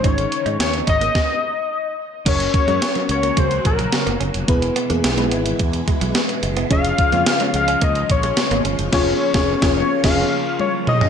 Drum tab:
CC |----------------|x---------------|----------------|----------------|
HH |xxxxxxxx--------|xxxxxxxxxxxxxxxx|xxxxxxxxxxxxxxxx|xxxxxxxxxxxxxxxx|
SD |----o---o-------|----o-------o---|----o-------o---|----o-------o---|
T1 |----------------|----------------|----------------|----------------|
T2 |----------------|----------------|----------------|----------------|
FT |----------------|----------------|----------------|----------------|
BD |o-----o-o-------|o-o-----o-o-----|o-------o-o-----|o-o-----o-o-----|

CC |x-------x-------|
HH |----------------|
SD |o--o-o--o-------|
T1 |------------o---|
T2 |--------------o-|
FT |---------------o|
BD |o--o-o--o-------|